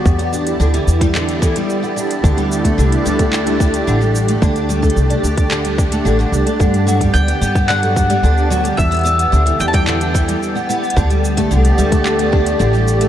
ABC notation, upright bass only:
X:1
M:4/4
L:1/8
Q:1/4=110
K:Dmix
V:1 name="Upright bass" clef=bass
E,,2 D,, E,,3 z2 | D,,2 C,, D,,3 A,,,2 | D,,2 C,, D,,3 A,,, C,, | G,,2 D,, G,,3 D,,2 |
E,,2 D,, E,,3 z2 | D,,2 C,, D,,3 A,,,2 |]